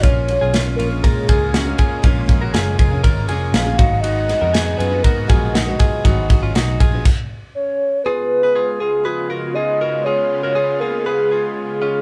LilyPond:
<<
  \new Staff \with { instrumentName = "Soft synth lead" } { \time 4/4 \key des \mixolydian \tempo 4 = 120 des''4. bes'8 aes'4. r8 | r2. f''4 | ees''4. ces''8 bes'4. r8 | r2. des''4 |
ces''4. aes'8 f'4 ees''4 | des''4. bes'8 aes'4 aes'4 | }
  \new Staff \with { instrumentName = "Clean electric guitar" } { \time 4/4 \key des \mixolydian <des' f'>8. <f' aes'>16 <des' f'>8 <des' f'>8 <f' bes'>8 <f' aes'>8 <des' ges'>8 <f' aes'>8 | <des' f'>8. <ges' bes'>16 <f' aes'>8 <f' aes'>8 <f' bes'>8 <f' aes'>4 <ees' ges'>8 | <ees' ges'>8. <ges' bes'>16 <ees' aes'>8 <f' aes'>8 <ges' bes'>8 <f' aes'>8 <ees' ges'>8 <f' aes'>8 | <ees' ges'>8. <des' f'>16 <ees' ges'>8 <f' aes'>8 r2 |
<f' aes'>8. <aes' ces''>16 <f' aes'>8 <f' aes'>8 <aes' ces''>8 <ges' bes'>8 <f' aes'>8 <ges' bes'>8 | <f' aes'>8. <ges' bes'>16 <f' aes'>8 <f' aes'>8 <aes' ces''>8 <f' aes'>4 <des' f'>8 | }
  \new Staff \with { instrumentName = "Steel-string acoustic guitar" } { \time 4/4 \key des \mixolydian <bes des' f' aes'>8 <bes des' f' aes'>4~ <bes des' f' aes'>16 <des' f' aes'>8. <bes des' f' aes'>8. <bes des' f' aes'>8. | <bes des' f' aes'>8 <bes des' f' aes'>4~ <bes des' f' aes'>16 <des' f' aes'>8. <bes des' f' aes'>8. <bes des' f' aes'>16 <aes, ees ges ces' ees' aes'>8~ | <aes, ees ges ces' ees' aes'>8 <ces' ees' aes'>4~ <ces' ees' aes'>16 <ges ces' ees' aes'>8. <aes, ees ges ces' ees' aes'>8. <aes, ees ges ces' ees' aes'>8. | <aes, ees ges ces' ees' aes'>8 <ges ces' ees' aes'>4~ <ges ces' ees' aes'>16 <ges ces' ees' aes'>16 r2 |
r1 | r1 | }
  \new Staff \with { instrumentName = "Analog synth pad" } { \time 4/4 \key des \mixolydian <aes bes des'>1~ | <aes bes des'>2.~ <aes bes des'>8 <ces' ees' ges'>8~ | <ces' ees' ges'>1~ | <ces' ees' ges'>2 r2 |
<des aes ces' f'>1~ | <des aes ces' f'>1 | }
  \new Staff \with { instrumentName = "Picked electric bass" } { \clef bass \time 4/4 \key des \mixolydian bes,,8. ces,8. bes,,8 bes,8 des,4 r8 | bes,,8 bes,,8 ges,,8 f,,8 aes,,8 f,,8 bes,,8 aes,,8~ | aes,,8. f,8. ges,8 aes,8 bes,,4 r8 | aes,,8 aes,,8 ces,8 bes,,8 r2 |
r1 | r1 | }
  \new DrumStaff \with { instrumentName = "Drums" } \drummode { \time 4/4 <hhp bd cymr>8 cymr8 <cymr sn>8 cymr8 <bd cymr>8 <bd cymr>8 <cymr sn>8 <bd cymr>8 | <bd cymr>8 <bd cymr>8 <cymr sn>8 <bd cymr>8 <bd cymr>8 cymr8 <cymr sn>8 <bd cymr>8 | cymr8 <cymr sn>8 <cymr sn>8 cymr8 <bd cymr>8 <bd cymr>8 <cymr sn>8 <bd cymr>8 | <bd cymr>8 <bd cymr>8 <cymr sn>8 <bd cymr>8 <cymc bd>4 r4 |
r4 r4 r4 r4 | r4 r4 r4 r4 | }
>>